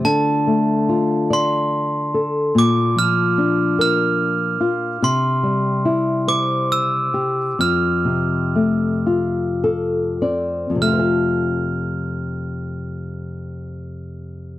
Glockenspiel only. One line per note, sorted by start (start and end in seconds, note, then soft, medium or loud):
0.05 1.35 A5 medium
1.33 2.53 C6 medium
2.58 2.99 D6 medium
2.99 3.80 F6 medium
3.81 4.68 F6 medium
5.04 6.31 C6 medium
6.29 6.71 D6 medium
6.72 7.55 E6 medium
7.61 10.18 F6 medium
10.82 14.59 F6 medium